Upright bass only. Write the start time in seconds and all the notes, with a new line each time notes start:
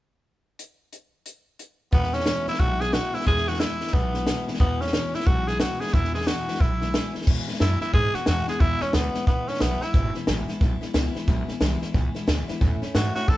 1.93 E2
2.47 muted upright bass stroke
2.60 B1
3.14 muted upright bass stroke
3.27 E2
3.81 muted upright bass stroke
3.93 B1
4.48 muted upright bass stroke
4.60 E2
5.14 muted upright bass stroke
5.27 B1
5.81 muted upright bass stroke
5.94 E2
6.48 muted upright bass stroke
6.60 B1
7.15 muted upright bass stroke
7.27 E2
7.48 muted upright bass stroke
7.60 F#2
7.81 muted upright bass stroke
7.94 G#2
8.14 muted upright bass stroke
8.27 E2
8.48 muted upright bass stroke
8.60 E2
8.81 muted upright bass stroke
8.94 D2
9.15 muted upright bass stroke
9.27 C#2
9.48 muted upright bass stroke
9.61 B1
9.82 muted upright bass stroke
9.94 G#1
10.15 muted upright bass stroke
10.28 A1
10.48 muted upright bass stroke
10.61 B1
10.82 muted upright bass stroke
10.94 C#2
11.15 muted upright bass stroke
11.28 B1
11.48 muted upright bass stroke
11.61 C2
11.81 muted upright bass stroke
11.94 C#2
12.15 muted upright bass stroke
12.28 D2
12.48 muted upright bass stroke
12.61 E2
12.82 muted upright bass stroke
12.95 G#2
13.15 muted upright bass stroke
13.28 A2